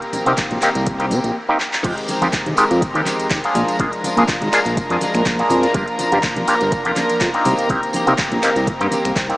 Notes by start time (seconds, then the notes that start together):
Already playing: A#4 A#5
0.01 A#3 C4 G4, closed hi-hat, tambourine
0.13 open hi-hat, tambourine, high conga, low conga
0.25 C3 A#3 C4 D#4 G4, closed hi-hat, tambourine, high conga
0.37 D#3 A#3 C4 G4, kick, clap, closed hi-hat, tambourine
0.51 A#1, closed hi-hat, tambourine, low conga
0.61 D#3 A#3 C4 D#4 G4, clap, open hi-hat, tambourine
0.74 C2 A#3 C4 G4, closed hi-hat, tambourine
0.87 kick, closed hi-hat, tambourine
0.98 A#3 C4 D#4 G4, closed hi-hat, tambourine
1.11 C3, open hi-hat, tambourine, high conga
1.24 A#1, closed hi-hat, tambourine
1.49 A#3 C4 D#4 G4
1.60 clap
1.73 clap
1.83 F2 D#3 G#3 C4 D#4 F4 G4 A#4 A#5, kick, closed hi-hat, crash, tambourine
1.98 closed hi-hat, tambourine
2.08 D#3 G#3 C4 G4, open hi-hat, tambourine, high conga
2.21 F1 G#3 D#4 F4 G4, closed hi-hat, tambourine, high conga
2.32 D#3 G#3 C4 G4, kick, clap, closed hi-hat, tambourine
2.46 D#2, closed hi-hat, tambourine, low conga
2.56 D#3 G#3 C4 D#4 F4 G4, open hi-hat, tambourine
2.70 F2 G#3 C4 G4, closed hi-hat, tambourine
2.82 D#2, kick, closed hi-hat, tambourine
2.93 D#2 G#3 C4 D#4 F4 G4, closed hi-hat, tambourine
3.05 D#3 G#3 C4 G4, clap, open hi-hat, tambourine, high conga
3.19 D#2, closed hi-hat, tambourine
3.30 D#2 D#3 G#3 C4 G4, kick, clap, closed hi-hat, tambourine
3.43 G#3 A#3 C4 D4 F4 G4 G#4, closed hi-hat, tambourine
3.54 A#1 F3 G#3 D4 F4, open hi-hat, tambourine, low conga
3.68 closed hi-hat, tambourine
3.79 A#1 A#3 D4 F4 G#4, kick, closed hi-hat, tambourine
3.92 closed hi-hat, tambourine
4.03 F3 G#3 D4 F4, open hi-hat, tambourine, high conga
4.17 A#2 A#3 D4 F4 G#4, closed hi-hat, tambourine, high conga
4.27 F3 G#3 D4 F4, kick, clap, closed hi-hat, tambourine
4.41 G#1, closed hi-hat, tambourine, low conga
4.51 F3 G#3 A#3 D4 F4 G#4, finger snap, clap, open hi-hat, tambourine
4.65 A#1 G#3 D4 F4, closed hi-hat, tambourine
4.77 kick, closed hi-hat, tambourine
4.89 F2 G#3 A#3 D4 F4 G#4, closed hi-hat, tambourine
5.00 F3 G#3 D4 F4, open hi-hat, tambourine, high conga
5.14 A#1, finger snap, closed hi-hat, tambourine
5.25 A#1 F3 G#3 D4 F4, kick, clap, closed hi-hat, tambourine
5.38 G#3 A#3 D4 F4 G#4, closed hi-hat, tambourine
5.50 F2, open hi-hat, tambourine, low conga
5.62 G#3 D4 F4, closed hi-hat, tambourine
5.74 G1 F3 A#3 D4 F4 G4, kick, closed hi-hat, tambourine
5.88 closed hi-hat, tambourine
5.98 F3 A#3 D4 F4, open hi-hat, tambourine, high conga
6.12 G2 A#3 D4 F4 G4, closed hi-hat, tambourine, high conga
6.22 F3 A#3 D4 F4, kick, clap, closed hi-hat, tambourine
6.36 F1, closed hi-hat, tambourine, low conga
6.47 F3 A#3 D4 F4 G4, open hi-hat, tambourine
6.60 G1 A#3 D4 F4, closed hi-hat, tambourine
6.72 F1, kick, closed hi-hat, tambourine
6.84 F1 A#3 D4 F4 G4, closed hi-hat, tambourine
6.96 F3 A#3 D4 F4, clap, open hi-hat, tambourine, high conga
7.09 F2, closed hi-hat, tambourine
7.20 F2 F3 A#3 D4 F4, kick, clap, closed hi-hat, tambourine
7.33 A#3 C4 D4 D#4 F4 G4, closed hi-hat, tambourine
7.45 C2 D#3 A#3 C4 G4, open hi-hat, tambourine, low conga
7.58 closed hi-hat, tambourine
7.69 C2 A#3 C4 D#4 G4, kick, closed hi-hat, tambourine
7.83 closed hi-hat, tambourine
7.93 D#3 A#3 C4 G4, open hi-hat, tambourine, high conga
8.07 C3 A#3 C4 D#4 G4, closed hi-hat, tambourine, high conga
8.18 D#3 A#3 C4 G4, kick, clap, closed hi-hat, tambourine
8.31 A#1, closed hi-hat, tambourine, low conga
8.42 D#3 A#3 C4 D#4 G4, finger snap, clap, open hi-hat, tambourine
8.55 C2 A#3 C4 G4, closed hi-hat, tambourine
8.67 kick, closed hi-hat, tambourine
8.79 G2 A#3 C4 D#4 G4, closed hi-hat, tambourine
8.91 D#3 A#3 C4 G4, open hi-hat, tambourine, high conga
9.05 C2, finger snap, closed hi-hat, tambourine
9.15 C2 D#3 A#3 C4 G4, kick, clap, closed hi-hat, tambourine
9.28 A#3 C4 D#4 G4, closed hi-hat, tambourine